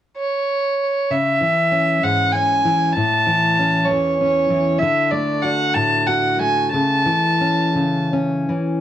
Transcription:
0.17 1.12 C#5 medium
1.10 1.42 C#3 soft
1.10 2.05 E5 medium
1.41 2.64 E3 soft
1.72 2.34 C#4 soft
2.03 2.92 G#2 soft
2.03 2.33 F#5 medium
2.32 2.93 C#4 soft
2.32 2.94 G#5 medium
2.65 2.92 E3 soft
2.92 3.86 A5 medium
2.97 3.89 A2 soft
3.27 4.49 E3 soft
3.59 4.20 C#4 soft
3.84 4.80 C#5 medium
3.90 4.82 E2 soft
4.21 4.79 C#4 soft
4.50 4.78 E3 soft
4.78 6.73 D3 medium
4.78 5.12 E5 medium
5.11 6.39 A3 soft
5.11 5.43 D5 medium
5.42 6.07 F#4 soft
5.42 5.75 F#5 medium
5.74 6.73 A2 soft
5.74 6.08 A5 medium
6.06 6.69 F#4 soft
6.06 6.40 F#5 medium
6.39 8.81 A3 soft
6.39 6.71 G#5 medium
6.72 7.07 C#3 medium
6.72 8.07 A5 medium
7.06 8.48 E3 soft
7.41 8.12 C#4 soft
7.75 8.48 C#3 soft
8.13 8.81 C#4 soft
8.49 8.81 E3 soft

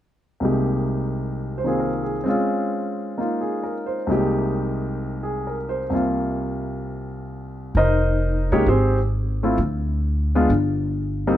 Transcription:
0.40 2.24 C2 soft
0.40 2.25 C3 soft
0.40 2.24 G#3 soft
0.40 1.63 A#3 soft
0.40 2.26 D#4 soft
0.45 2.27 G4 soft
1.58 1.89 C5 soft
1.64 2.25 D#3 soft
1.64 2.25 A#3 soft
1.64 2.22 C4 soft
1.64 2.26 F4 soft
1.64 2.02 G#4 soft
1.80 2.15 A#4 soft
2.03 2.35 G#4 soft
2.24 4.07 G#3 soft
2.24 4.08 C4 soft
2.24 4.10 C#4 soft
2.29 3.19 F4 medium
3.18 4.08 A#3 soft
3.18 4.09 D#4 soft
3.18 4.10 F4 soft
3.41 3.72 G#4 soft
3.63 3.99 A#4 soft
3.86 4.18 C5 soft
4.07 5.88 C2 soft
4.07 5.90 C3 soft
4.07 5.92 G#3 soft
4.07 5.92 A#3 soft
4.07 5.93 D#4 soft
4.12 5.93 G4 soft
5.23 5.55 G#4 soft
5.47 5.82 A#4 soft
5.69 6.01 C5 soft
5.90 7.74 C2 soft
5.90 7.75 C3 soft
5.90 7.75 A#3 soft
5.95 7.76 F4 soft
7.75 8.47 F1 medium
7.75 8.49 D#4 medium
7.75 8.48 A#4 medium
7.75 8.48 C5 soft
7.75 8.48 D#5 medium
8.52 8.65 C2 medium
8.52 8.65 G#3 medium
8.52 8.65 A#3 soft
8.52 8.67 C#4 medium
8.52 8.65 D#4 soft
8.52 8.66 G4 medium
8.52 8.66 C#5 medium
8.66 9.54 G#1 medium
8.66 8.97 C4 soft
8.66 8.97 G4 soft
8.66 8.97 G#4 soft
8.66 8.97 C5 medium
9.43 9.56 A3 soft
9.43 9.57 C4 soft
9.43 9.57 E4 soft
9.43 9.57 F4 medium
9.58 10.45 D2 medium
10.35 10.48 G#3 medium
10.35 10.48 B3 medium
10.35 10.49 D4 medium
10.35 10.49 F4 medium
10.50 11.37 G1 medium
11.27 11.37 G3 medium
11.27 11.37 A#3 medium
11.27 11.37 C4 medium
11.27 11.37 D#4 medium

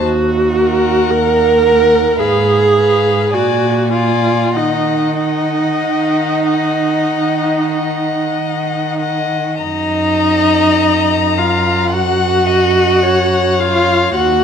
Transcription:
0.03 0.98 D#2 soft
0.03 1.12 F#4 medium
0.57 1.63 A#4 soft
0.57 1.62 F#5 soft
1.10 2.06 D#2 soft
1.10 2.21 A#4 medium
1.64 2.18 A#4 soft
1.64 2.18 F#5 soft
2.19 3.19 G#2 soft
2.19 3.35 G#4 medium
2.19 2.74 B4 soft
2.19 2.75 F5 soft
2.76 3.32 B4 soft
2.76 3.32 F5 soft
3.32 4.40 A#2 soft
3.32 3.93 F#4 medium
3.32 3.92 D5 soft
3.32 3.91 G#5 soft
3.92 4.58 F4 medium
3.92 4.54 D5 soft
3.92 4.54 G#5 soft
4.54 5.68 D#3 soft
4.54 9.02 D#4 soft
4.54 5.18 D#5 soft
4.54 5.18 F#5 soft
5.19 6.46 D#5 soft
5.19 6.45 F#5 soft
5.83 6.96 D#3 soft
6.48 7.72 D#5 soft
6.48 7.72 F#5 soft
7.11 8.23 D#3 soft
7.74 8.98 D#5 soft
7.74 8.99 F#5 soft
8.37 9.48 D#3 soft
9.00 9.61 D#5 soft
9.00 9.61 F#5 soft
9.62 14.11 F#2 soft
9.62 11.40 D#4 medium
9.62 11.40 D#5 medium
9.62 11.89 A#5 soft
11.38 11.95 F4 soft
11.38 11.93 F5 soft
11.93 13.61 F#4 medium
11.93 13.62 F#5 medium
11.93 12.49 F#5 soft
12.47 13.04 D#5 soft
13.03 14.16 C#5 medium
13.60 14.15 F4 medium
13.60 14.15 F5 medium
14.15 14.44 D#2 medium
14.15 14.44 F#4 medium
14.15 14.44 F#5 soft
14.15 14.44 F#5 medium

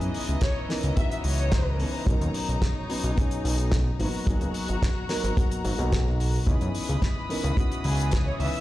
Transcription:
0.00 0.09 F#2 medium
0.00 0.66 E3 medium
0.00 2.03 E3 medium
0.00 0.66 B3 medium
0.00 0.66 C#4 medium
0.00 0.66 D#4 medium
0.00 0.67 G#4 loud
0.00 2.03 D#5 medium
0.00 3.96 A#5 medium
0.00 closed hi-hat medium
0.14 open hi-hat loud
0.28 0.37 C#2 medium
0.28 closed hi-hat soft
0.41 0.57 C#5 medium
0.41 kick loud
0.41 snare loud
0.41 closed hi-hat medium
0.69 0.93 E3 medium
0.69 0.94 B3 medium
0.69 0.94 C#4 medium
0.69 0.94 D#4 medium
0.69 0.94 A#4 loud
0.69 snare medium
0.69 open hi-hat loud
0.83 0.92 C#2 medium
0.83 closed hi-hat medium
0.96 1.76 E3 medium
0.96 1.77 B3 medium
0.96 1.77 C#4 medium
0.96 1.77 D#4 medium
0.96 1.77 F#4 medium
0.96 1.06 E5 medium
0.96 kick loud
0.96 closed hi-hat loud
1.11 1.20 E5 medium
1.11 closed hi-hat medium
1.24 1.85 C#2 medium
1.24 1.79 C#5 medium
1.24 open hi-hat loud
1.39 closed hi-hat medium
1.52 kick loud
1.52 snare loud
1.52 closed hi-hat medium
1.79 2.04 E3 medium
1.79 2.04 B3 medium
1.79 2.04 C#4 medium
1.79 2.04 D#4 medium
1.79 2.04 B4 medium
1.79 open hi-hat loud
2.06 2.16 B1 loud
2.06 2.86 F#3 medium
2.06 2.86 B3 medium
2.06 2.86 C#4 medium
2.06 3.98 D#4 medium
2.06 2.87 D#4 medium
2.06 2.87 A#4 loud
2.06 3.98 C#5 medium
2.06 kick loud
2.06 closed hi-hat medium
2.21 2.29 D#2 medium
2.21 closed hi-hat medium
2.34 open hi-hat loud
2.49 2.57 B1 medium
2.49 closed hi-hat medium
2.62 kick loud
2.62 snare loud
2.62 closed hi-hat medium
2.89 3.14 F#3 medium
2.89 3.14 B3 medium
2.89 3.14 C#4 medium
2.89 3.14 D#4 medium
2.89 3.14 B4 loud
2.89 open hi-hat loud
3.03 3.12 B1 medium
3.03 closed hi-hat medium
3.16 3.97 F#3 medium
3.16 3.97 B3 medium
3.16 3.97 C#4 medium
3.16 3.97 D#4 medium
3.16 3.98 G#4 medium
3.16 kick loud
3.16 closed hi-hat medium
3.31 closed hi-hat medium
3.45 3.91 B1 medium
3.45 open hi-hat loud
3.59 closed hi-hat medium
3.72 kick loud
3.72 snare loud
3.72 closed hi-hat medium
3.99 4.08 G#1 medium
3.99 4.24 F#3 medium
3.99 4.24 A#3 medium
3.99 4.24 B3 medium
3.99 4.24 D#4 medium
3.99 6.45 F#4 medium
3.99 4.24 B4 medium
3.99 6.45 A#5 medium
3.99 open hi-hat loud
4.26 4.36 G#1 loud
4.26 5.06 F#3 loud
4.26 5.06 A#3 medium
4.26 5.07 B3 medium
4.26 5.07 D#4 medium
4.26 5.07 G#4 loud
4.26 kick loud
4.26 closed hi-hat medium
4.41 4.50 C#2 medium
4.41 closed hi-hat medium
4.54 open hi-hat loud
4.68 4.77 G#1 medium
4.68 closed hi-hat medium
4.82 kick loud
4.82 snare loud
4.82 closed hi-hat medium
5.09 5.34 F#3 loud
5.09 5.34 A#3 medium
5.09 5.34 B3 medium
5.09 5.34 D#4 medium
5.09 5.34 A#4 loud
5.09 snare medium
5.09 open hi-hat loud
5.24 5.32 G#1 medium
5.24 closed hi-hat medium
5.36 5.76 F#3 medium
5.36 5.76 A#3 medium
5.36 5.76 B3 medium
5.36 5.76 D#4 medium
5.36 5.76 F#4 medium
5.36 kick loud
5.36 closed hi-hat medium
5.51 closed hi-hat medium
5.64 5.73 G#1 loud
5.64 open hi-hat loud
5.78 6.39 B1 loud
5.78 6.44 F#3 medium
5.78 6.44 A#3 medium
5.78 6.44 B3 medium
5.78 6.44 D#4 medium
5.78 6.45 F#4 medium
5.78 closed hi-hat soft
5.92 kick loud
5.92 snare loud
5.92 closed hi-hat medium
6.20 open hi-hat medium
6.46 6.56 C#2 loud
6.46 7.26 E3 medium
6.46 8.61 E3 medium
6.46 7.26 B3 medium
6.46 7.27 C#4 medium
6.46 7.27 D#4 medium
6.46 7.27 G#4 loud
6.46 8.61 B5 medium
6.46 8.61 D#6 medium
6.46 kick loud
6.46 closed hi-hat medium
6.61 6.70 F#2 medium
6.61 closed hi-hat soft
6.75 open hi-hat loud
6.89 6.97 C#2 medium
6.89 closed hi-hat medium
7.02 kick medium
7.02 snare loud
7.02 closed hi-hat medium
7.29 7.54 E3 medium
7.29 7.54 B3 medium
7.29 7.54 C#4 medium
7.29 7.54 D#4 medium
7.29 7.54 A#4 loud
7.29 open hi-hat loud
7.44 7.52 C#2 medium
7.44 closed hi-hat medium
7.56 8.37 E3 medium
7.56 8.37 B3 medium
7.56 8.37 C#4 medium
7.56 8.38 D#4 medium
7.56 8.38 F#4 medium
7.56 kick loud
7.56 closed hi-hat medium
7.72 closed hi-hat medium
7.84 8.32 C#2 loud
7.84 8.24 G#4 medium
7.84 open hi-hat loud
8.00 closed hi-hat medium
8.11 kick loud
8.11 snare loud
8.11 closed hi-hat medium
8.27 8.37 C#5 medium
8.39 8.49 C#2 medium
8.39 8.61 E3 medium
8.39 8.61 B3 medium
8.39 8.61 C#4 medium
8.39 8.61 D#4 medium
8.39 8.61 B4 medium
8.39 8.55 E5 medium
8.39 open hi-hat medium

